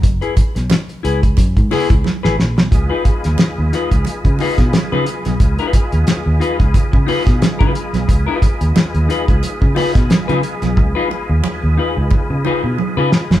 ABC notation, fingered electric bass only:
X:1
M:4/4
L:1/16
Q:"Swing 16ths" 1/4=89
K:Db
V:1 name="Fingered electric bass" clef=bass
G,,, z2 _C,, z2 D,,2 G,, A,, z D,, z A,,, B,,, C,, | D,, z2 E,, z E,, z D,, z D, z _C, z D, z _C,, | D,, z2 E,, z E,, z D,, z D, z _C, z D, z _C,, | D,, z2 E,, z E,, z D,, z D, z _C, z D, z _C,, |
D,, z2 E,, z E,, z D,, z D, z _C, z D, z G,,, |]